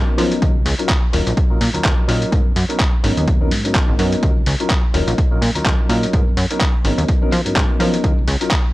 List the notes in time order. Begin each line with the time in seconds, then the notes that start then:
Already playing: F#3 B3 C#4 D#4 A#4
0.18 F3 F#3 B3 C#4 D#4 A#4, open hi-hat, maracas
0.32 closed hi-hat, maracas
0.41 D#2 F#3 C#4 D#4 F4 A#4, kick, closed hi-hat
0.55 C#2, maracas
0.65 C#2, open hi-hat, maracas
0.79 F#3 C#4 D#4 F4 A#4, closed hi-hat
0.89 kick, clap, closed hi-hat
1.12 D#1 F#3 C#4 D#4 F4 A#4, open hi-hat, maracas
1.26 A#1, closed hi-hat, maracas
1.37 kick, closed hi-hat
1.50 A#2 F#3 C#4 D#4 F4 A#4, maracas
1.61 A#2, open hi-hat, maracas
1.74 D#2 F#3 C#4 D#4 F4 A#4, closed hi-hat, maracas
1.84 D#2, kick, clap, closed hi-hat
2.08 A#2 F#3 C#4 D#4 F4 A#4, open hi-hat, maracas
2.22 closed hi-hat, maracas
2.32 G#2 F#3 B3 C#4 D#4 A#4, kick, closed hi-hat, maracas
2.46 F#2, maracas
2.56 F#2, open hi-hat, maracas
2.69 F#3 B3 C#4 D#4 A#4, closed hi-hat, maracas
2.80 kick, clap, closed hi-hat
2.93 maracas
3.03 G#1 F#3 B3 C#4 D#4 A#4, open hi-hat, maracas
3.17 D#2, closed hi-hat, maracas
3.26 kick, closed hi-hat, maracas
3.40 F#3 B3 C#4 D#4 A#4, maracas
3.51 G#2, open hi-hat, maracas
3.65 F#3 B3 C#4 D#4 A#4, closed hi-hat, maracas
3.75 kick, clap, closed hi-hat
3.89 G#1
3.99 F#2 F#3 B3 C#4 D#4 A#4, open hi-hat, maracas
4.12 closed hi-hat, maracas
4.23 D#2 F#3 C#4 D#4 F4 A#4, kick, closed hi-hat
4.36 C#2, maracas
4.46 C#2, open hi-hat, maracas
4.60 F#3 C#4 D#4 F4 A#4, closed hi-hat, maracas
4.70 kick, clap, closed hi-hat
4.84 maracas
4.94 D#1 F#3 C#4 D#4 F4 A#4, open hi-hat, maracas
5.07 A#1, closed hi-hat, maracas
5.18 kick, closed hi-hat, maracas
5.31 A#2 F#3 C#4 D#4 F4 A#4, maracas
5.42 A#2, open hi-hat, maracas
5.55 D#2 F#3 C#4 D#4 F4 A#4, closed hi-hat, maracas
5.66 D#2, kick, clap, closed hi-hat
5.79 maracas
5.89 A#2 F#3 C#4 D#4 F4 A#4, open hi-hat, maracas
6.03 closed hi-hat, maracas
6.13 G#2 F#3 B3 C#4 D#4 A#4, kick, closed hi-hat, maracas
6.27 F#2, maracas
6.37 F#2, open hi-hat, maracas
6.50 F#3 B3 C#4 D#4 A#4, closed hi-hat, maracas
6.61 kick, clap, closed hi-hat
6.74 maracas
6.84 G#1 F#3 B3 C#4 D#4 A#4, open hi-hat, maracas
6.97 D#2, closed hi-hat, maracas
7.08 kick, closed hi-hat, maracas
7.21 F3 F#3 B3 C#4 D#4 A#4, maracas
7.31 F3, open hi-hat, maracas
7.45 G#2 F#3 B3 C#4 D#4 A#4, closed hi-hat, maracas
7.56 G#2, kick, clap, closed hi-hat
7.69 maracas
7.79 F3 F#3 B3 C#4 D#4 A#4, open hi-hat, maracas
7.94 closed hi-hat, maracas
8.03 D#2 F#3 C#4 D#4 F4 A#4, kick, closed hi-hat, maracas
8.17 C#2, maracas
8.28 C#2, open hi-hat, maracas
8.41 F#3 C#4 D#4 F4 A#4, closed hi-hat, maracas
8.51 kick, clap, closed hi-hat
8.65 maracas